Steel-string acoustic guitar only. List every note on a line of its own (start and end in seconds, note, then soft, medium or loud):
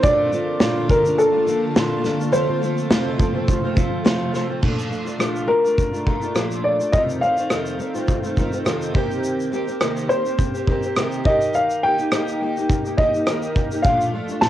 0.03 0.32 A#2 medium
0.03 0.30 F3 medium
0.03 0.31 A3 medium
0.03 0.32 D4 medium
0.03 0.32 F4 loud
0.31 0.59 F3 medium
0.31 0.59 A3 medium
0.31 0.60 D4 medium
0.31 0.60 F4 medium
0.60 0.89 A#2 medium
0.60 0.87 F3 medium
0.60 0.88 A3 medium
0.60 0.89 D4 medium
0.60 0.89 F4 loud
0.88 1.05 F3 medium
0.88 1.05 A3 medium
0.88 1.05 D4 medium
0.88 1.04 F4 medium
1.05 1.33 A3 soft
1.05 1.32 D4 soft
1.05 1.31 F4 medium
1.32 1.45 A3 soft
1.32 1.46 D4 soft
1.32 1.46 F4 soft
1.46 1.74 F3 medium
1.46 1.75 A3 medium
1.46 1.75 D4 medium
1.46 1.75 F4 medium
1.75 2.04 A#2 medium
1.75 2.02 F3 medium
1.75 2.03 A3 medium
1.75 2.04 D4 medium
1.75 2.05 F4 medium
2.03 2.20 F3 medium
2.03 2.20 A3 medium
2.03 2.19 D4 medium
2.03 2.18 F4 medium
2.19 2.32 A3 soft
2.19 2.32 D4 soft
2.19 2.32 F4 medium
2.31 2.48 F2 medium
2.31 2.48 C3 medium
2.31 2.48 F3 medium
2.31 2.48 A3 medium
2.31 2.47 C4 medium
2.31 2.46 F4 loud
2.47 2.60 F3 soft
2.47 2.60 A3 soft
2.47 2.61 C4 soft
2.47 2.61 F4 soft
2.61 2.90 F3 medium
2.61 2.90 A3 medium
2.61 2.90 C4 medium
2.61 2.91 F4 medium
2.90 3.19 F2 medium
2.90 3.19 C3 medium
2.90 3.17 F3 medium
2.90 3.18 A3 medium
2.90 3.19 C4 loud
2.90 3.19 F4 loud
3.18 3.35 F3 medium
3.18 3.34 A3 medium
3.18 3.33 C4 medium
3.18 3.33 F4 medium
3.34 3.65 F3 soft
3.34 3.63 A3 soft
3.34 3.63 C4 medium
3.34 3.62 F4 medium
3.64 3.74 F3 soft
3.64 3.74 A3 soft
3.64 3.74 C4 medium
3.64 3.75 F4 medium
3.75 4.03 F3 medium
3.75 4.03 A3 medium
3.75 4.03 C4 medium
3.75 4.04 F4 medium
4.04 4.34 F2 medium
4.04 4.34 C3 medium
4.04 4.31 F3 loud
4.04 4.32 A3 loud
4.04 4.33 C4 loud
4.04 4.33 F4 loud
4.33 4.49 F3 medium
4.33 4.48 A3 medium
4.33 4.48 C4 medium
4.33 4.47 F4 medium
4.49 4.61 F3 medium
4.49 4.61 A3 medium
4.49 4.62 C4 medium
4.49 4.62 F4 medium
4.61 4.91 A#2 medium
4.61 4.89 F3 medium
4.61 4.89 A3 medium
4.61 4.89 D4 medium
4.61 4.91 F4 medium
4.90 5.07 F3 medium
4.90 5.06 A3 medium
4.90 5.05 D4 medium
4.90 5.04 F4 medium
5.05 5.18 A3 soft
5.05 5.18 D4 soft
5.05 5.18 F4 medium
5.18 5.48 A#2 medium
5.18 5.45 F3 medium
5.18 5.46 A3 medium
5.18 5.46 D4 medium
5.18 5.48 F4 medium
5.46 5.64 F3 medium
5.46 5.64 A3 medium
5.46 5.63 D4 medium
5.46 5.62 F4 medium
5.63 5.94 A3 soft
5.63 5.93 D4 soft
5.63 5.91 F4 soft
5.93 6.05 A3 soft
5.93 6.05 D4 soft
5.93 6.06 F4 soft
6.05 6.22 F3 medium
6.05 6.23 A3 medium
6.05 6.22 D4 medium
6.05 6.21 F4 medium
6.23 6.34 A3 soft
6.23 6.34 D4 soft
6.23 6.34 F4 medium
6.34 6.80 A#2 medium
6.34 6.80 F3 medium
6.34 6.80 A3 medium
6.34 6.80 D4 medium
6.34 6.78 F4 medium
6.79 6.93 A3 soft
6.79 6.94 D4 soft
6.79 6.93 F4 soft
6.93 7.22 F2 medium
6.93 7.22 C3 medium
6.93 7.20 D#3 medium
6.93 7.21 A3 medium
6.93 7.22 C4 medium
6.93 7.22 F4 medium
7.21 7.38 D#3 medium
7.21 7.37 A3 medium
7.21 7.37 C4 medium
7.21 7.36 F4 medium
7.37 7.49 D#3 soft
7.37 7.49 A3 soft
7.37 7.49 C4 soft
7.37 7.50 F4 soft
7.49 7.79 F2 medium
7.49 7.79 C3 medium
7.49 7.77 D#3 medium
7.49 7.78 A3 medium
7.49 7.79 C4 medium
7.49 7.79 F4 medium
7.78 7.95 D#3 medium
7.78 7.95 A3 medium
7.78 7.94 C4 medium
7.78 7.93 F4 medium
7.94 8.23 D#3 soft
7.94 8.23 A3 medium
7.94 8.23 C4 medium
7.94 8.21 F4 medium
8.22 8.35 D#3 soft
8.22 8.37 A3 soft
8.22 8.37 C4 soft
8.22 8.36 F4 medium
8.37 8.53 D#3 medium
8.37 8.52 A3 medium
8.37 8.53 C4 medium
8.37 8.51 F4 medium
8.52 8.64 D#3 soft
8.52 8.64 A3 soft
8.52 8.64 C4 medium
8.52 8.65 F4 soft
8.64 8.94 F2 medium
8.64 8.93 C3 medium
8.64 8.92 D#3 medium
8.64 8.94 A3 medium
8.64 8.93 C4 medium
8.64 8.94 F4 medium
8.94 9.52 C3 medium
8.94 9.50 D#3 medium
8.94 9.51 A#3 medium
8.94 9.52 C4 medium
8.94 9.53 G4 medium
9.51 9.68 D#3 medium
9.51 9.68 A#3 medium
9.51 9.67 C4 medium
9.51 9.66 G4 medium
9.67 9.80 A#3 soft
9.67 9.80 C4 soft
9.67 9.81 G4 medium
9.80 10.10 C3 medium
9.80 10.08 D#3 medium
9.80 10.09 A#3 loud
9.80 10.09 C4 loud
9.80 10.10 G4 medium
10.09 10.26 D#3 medium
10.09 10.25 A#3 medium
10.09 10.25 C4 medium
10.09 10.23 G4 medium
10.24 10.55 A#3 soft
10.24 10.54 C4 medium
10.24 10.53 G4 soft
10.54 10.67 A#3 soft
10.54 10.68 C4 soft
10.54 10.68 G4 soft
10.67 10.84 D#3 medium
10.67 10.84 A#3 medium
10.67 10.84 C4 medium
10.67 10.82 G4 medium
10.84 10.95 A#3 soft
10.84 10.95 C4 soft
10.84 10.96 G4 medium
10.96 11.25 C3 medium
10.96 11.24 D#3 medium
10.96 11.25 A#3 loud
10.96 11.25 C4 medium
10.96 11.25 G4 medium
11.25 11.82 D#3 medium
11.25 11.83 A#3 medium
11.25 11.83 D#4 medium
11.25 11.84 G4 medium
11.84 11.99 D#3 medium
11.84 11.99 A#3 medium
11.84 11.98 D#4 medium
11.84 11.97 G4 medium
11.98 12.10 A#3 soft
11.98 12.11 D#4 soft
11.98 12.11 G4 soft
12.12 12.39 D#3 medium
12.12 12.40 A#3 medium
12.12 12.41 D#4 medium
12.12 12.41 G4 medium
12.40 12.57 D#3 medium
12.40 12.57 A#3 medium
12.40 12.57 D#4 medium
12.40 12.56 G4 medium
12.57 12.86 A#3 soft
12.57 12.84 D#4 medium
12.57 12.83 G4 medium
12.84 12.97 A#3 soft
12.84 12.98 D#4 soft
12.84 12.98 G4 soft
12.98 13.14 D#3 medium
12.98 13.14 A#3 medium
12.98 13.14 D#4 medium
12.98 13.13 G4 medium
13.14 13.26 A#3 soft
13.14 13.27 D#4 soft
13.14 13.27 G4 soft
13.27 13.72 D#3 medium
13.27 13.72 A#3 medium
13.27 13.72 D#4 medium
13.27 13.70 G4 medium
13.72 13.86 A#3 soft
13.72 13.85 D#4 soft
13.72 13.85 G4 soft
13.85 14.14 A#2 medium
13.85 14.12 F3 medium
13.85 14.13 A3 medium
13.85 14.13 D4 medium
13.85 14.14 F4 medium
14.13 14.29 F3 medium
14.13 14.30 A3 medium
14.13 14.29 D4 medium
14.13 14.28 F4 medium
14.29 14.42 A3 soft
14.29 14.42 D4 soft
14.29 14.42 F4 medium
14.42 14.49 A#2 medium
14.42 14.49 F3 medium
14.42 14.49 A3 medium
14.42 14.49 D4 medium
14.42 14.49 F4 medium